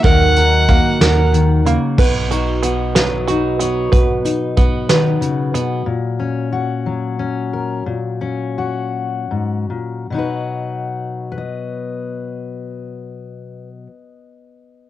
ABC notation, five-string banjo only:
X:1
M:6/8
L:1/8
Q:3/8=60
K:B
V:1 name="Five-string banjo"
[A,FA]2 A, A2 A, | B F B, B F B, | B2 B, B2 B, | z6 |
z6 | z6 | z6 |]